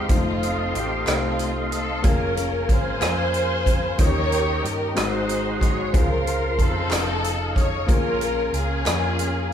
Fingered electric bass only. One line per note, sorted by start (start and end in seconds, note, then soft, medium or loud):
0.09 0.71 F1 medium
0.74 1.04 A1 medium
1.07 2.00 C2 medium
2.04 2.65 F1 medium
2.69 3.02 G#1 medium
3.01 3.95 F2 medium
3.99 4.60 D#2 medium
4.64 4.94 G2 medium
4.97 5.90 G#1 medium
5.94 6.59 C#2 medium
6.59 6.89 F2 medium
6.92 7.85 F1 medium
7.88 8.49 A#1 medium
8.53 8.83 C#2 medium
8.86 9.53 F2 medium